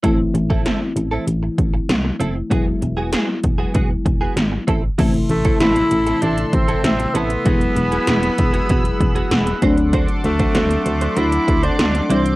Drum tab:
CC |----------------|----------------|x---------------|----------------|
HH |x-x-x-x-x-x-x-x-|x-x-x-x-x-x-x-x-|xxxxxxxxxxxxxxxx|xxxxxxxxxxxxxxxx|
SD |----o-------o---|----o-------o---|----o-------o---|----o-------o---|
BD |o--o------o-----|o-----o-o-o---o-|o--o------o-----|o-----o-o-o---o-|

CC |----------------|
HH |xxxxxxxxxxxxxxxx|
SD |----o-------o---|
BD |o--o------o-----|